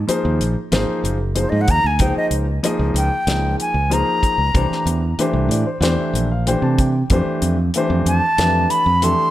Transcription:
0.07 F3 A#3 D#4 G#4 C5, muted fingered electric bass stroke, closed hi-hat
0.25 D#2
0.41 A#1, closed hi-hat
0.72 G#1 F3 A#3 D#4 G#4 C5, snare, closed hi-hat
1.04 F#1, closed hi-hat
1.35 F3 A#3 D#4 G#4 C5, closed hi-hat
1.40 C5
1.50 G#2 D#5
1.61 F#5
1.68 D#2 A#5, kick, closed hi-hat
1.84 D2 G#5
1.99 C#2 F3 A#3 D#4 G#4 C5 G5, kick, closed hi-hat
2.17 D#5, muted fingered electric bass stroke
2.31 C#2, closed hi-hat
2.63 F3 A#3 D#4 G#4 D#5, closed hi-hat
2.79 C#2
2.94 C#2 G5, closed hi-hat
3.27 C#2 F3 A#3 D#4 G#4 D#5, snare, closed hi-hat
3.60 G#5, closed hi-hat
3.74 C#2
3.90 F3 A#3 D#4 G#4 C5 A#5, closed hi-hat
4.23 kick, closed hi-hat
4.38 C#2
4.54 C2 E3 A3 D4 G4 C5, kick, closed hi-hat
4.72 snare
4.86 E2, closed hi-hat
5.18 E3 A3 D4 G4 C5, muted fingered electric bass stroke, closed hi-hat
5.33 C2
5.49 A2 D5, closed hi-hat
5.67 C5
5.81 E2 E3 A3 D4 G4 C5 D5, snare, closed hi-hat
5.98 E5, muted fingered electric bass stroke
6.13 A#1, closed hi-hat
6.32 F5
6.46 E3 A3 D4 G4 C5 G5, closed hi-hat
6.62 C3 A5
6.79 G5, kick, closed hi-hat
7.10 F2 E3 A3 D4 G4 C5, kick, closed hi-hat
7.26 muted fingered electric bass stroke
7.42 F2, closed hi-hat
7.74 E3 A3 D4 G4 C5, closed hi-hat
7.90 F2
8.06 F2 A5, closed hi-hat
8.38 F2 E3 A3 D4 G4 B4, snare, closed hi-hat
8.70 B5, closed hi-hat
8.86 F2
9.02 E3 A3 D4 G4 A4 C6, closed hi-hat

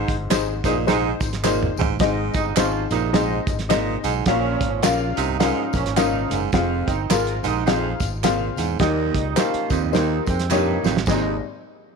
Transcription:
Already playing: G#2 D#4 G#4 C5
0.08 G1, kick, closed hi-hat
0.30 G#1 D#4 G#4 C5, snare, clap, closed hi-hat, tambourine, high conga
0.64 A#1 A#2 C3 G#3 D#4 G#4 C5, kick, closed hi-hat, tambourine
0.75 low conga
0.86 G#2 C3 G#3 D#4 G#4 C5, snare, closed hi-hat, tambourine, muted conga
1.20 G#1, kick, closed hi-hat, tambourine, muted conga
1.33 snare, closed hi-hat
1.42 A#2 D#4 G#4 C5, snare, clap, tambourine, high conga
1.63 mid tom
1.77 A1 G#2, tambourine, high conga
1.81 floor tom
1.99 G#1 G#2 C4 D#4 G#4 D#5, kick, snare, closed hi-hat, tambourine, muted conga
2.33 G1 C3 G#3 D#4, kick, closed hi-hat, tambourine
2.55 G#1 F3 C4 C#4 D#4 F4 G#4 C5, snare, clap, closed hi-hat, tambourine, high conga
2.90 A#1 A#2 C3 G#3 D#4, closed hi-hat, tambourine, low conga
3.13 G#2 C4 D#4 G#4 D#5, snare, closed hi-hat, tambourine, muted conga
3.47 G#1, kick, closed hi-hat, tambourine, muted conga, low conga
3.59 snare, closed hi-hat
3.69 A#2 C4 D#4 G#4 D#5, snare, clap, closed hi-hat, tambourine, high conga
3.88 high conga
4.04 B1 G#2, closed hi-hat, tambourine, high conga
4.26 A#1 A#2 F3 C#4 F4 A#4 F5, kick, snare, closed hi-hat, tambourine, muted conga
4.61 G#1, kick, closed hi-hat
4.83 A#1 C#3 A#3 C#4 F4 A#4 F5, snare, clap, closed hi-hat, tambourine, high conga
5.17 C2 A#2 C3 F3 D#4, closed hi-hat, tambourine
5.29 low conga
5.39 G#2 C#4 F4 A#4 F5, snare, closed hi-hat, tambourine, muted conga
5.73 A#1 A#2 F3 C#4, kick, closed hi-hat, tambourine, muted conga, low conga
5.86 G#1, snare, closed hi-hat
5.96 A#2 F3 C#4 D#4 F4 A#4 F5, snare, clap, closed hi-hat, tambourine, high conga
6.14 high conga
6.30 F#1 G#2, closed hi-hat, tambourine, high conga
6.52 F1 F2 C4 F4 G#4 F5, kick, snare, closed hi-hat, tambourine, muted conga
6.86 G1 D#3 C4 D#4, kick, closed hi-hat, tambourine, muted conga
7.09 G#1 C3 G#3 C4 F4 G#4 A#4, snare, clap, closed hi-hat, tambourine, high conga
7.27 closed hi-hat
7.43 A#1 G#2 C3 G#3 D#4, closed hi-hat, tambourine, low conga
7.66 F2 C4 F4 G#4 F5, snare, closed hi-hat, tambourine, muted conga
8.00 G#1, kick, closed hi-hat, tambourine, muted conga, low conga
8.23 A#2 C4 F4 G#4 F5, snare, clap, closed hi-hat, tambourine, high conga
8.40 high conga
8.56 E2 G#2, closed hi-hat, tambourine, high conga
8.79 D#2 A#2 D#3 G3 A#3 D#4 G4 D#5, kick, snare, closed hi-hat, tambourine, muted conga
9.15 C#2, kick, closed hi-hat
9.36 F3 A#3 C#4 D#4 F4 G4 C5, snare, clap, closed hi-hat, tambourine, high conga
9.54 muted fingered electric bass stroke, closed hi-hat
9.70 D#2 F2 A#2 G3 D#4, kick, closed hi-hat, tambourine
9.83 low conga
9.92 D#2 A#3 D#4 G4 C5, snare, closed hi-hat, tambourine, muted conga
10.26 F2 C3 G#3 C4, kick, closed hi-hat, tambourine, muted conga, low conga
10.39 snare, closed hi-hat
10.50 G2 A#2 G3 A#3 D#4 G4 C#5, snare, clap, tambourine, high conga
10.67 high conga
10.83 A1 F2, snare, tambourine, high conga
10.97 snare
11.06 G#1 D#2 C3 G#3 C4 D#4 G#4 D#5, kick, snare, tambourine, crash, muted conga

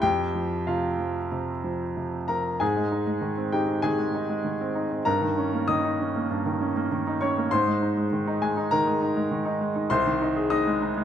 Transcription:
0.02 F2 G4 G5
0.35 F3
0.67 C3 F4 F5
0.99 F3
1.32 C3
1.64 F3
1.97 C3
2.28 F3 A#4 A#5
2.60 G#2 G#4 G#5
2.76 G#3
2.92 D#4
3.07 G#3
3.21 D#3
3.38 C4
3.52 D#4 G4 G5
3.68 C4
3.82 D#3 G#4 G#5
3.99 G#3
4.14 D#4
4.29 G#3
4.45 D#3
4.61 C4
4.75 D#4
4.91 C4
5.05 G2 A#4 A#5
5.21 D#3
5.38 C#4
5.53 A#3
5.68 D#3 D#5 D#6
5.84 D#4
6.00 C#4
6.16 A#3
6.31 G2
6.46 D#3
6.61 C#4
6.76 A#3
6.91 D#3
7.07 D#4
7.21 C#4 C#5 C#6
7.37 A#3
7.51 G#2 C5 C6
7.67 G#3
7.82 D#4
7.97 G#3
8.13 D#3
8.27 D#4
8.42 G#3 G#4 G#5
8.57 D#4
8.71 D#3 A#4 A#5
8.87 G#3
9.01 D#4
9.17 G#3
9.31 D#3
9.45 D#4
9.61 G#3
9.75 D#4
9.90 C2 C5 C6
10.06 D#3
10.21 D#4
10.37 G#4
10.50 D#4 D#5 D#6
10.67 G#3
10.82 D#4
10.97 G#3

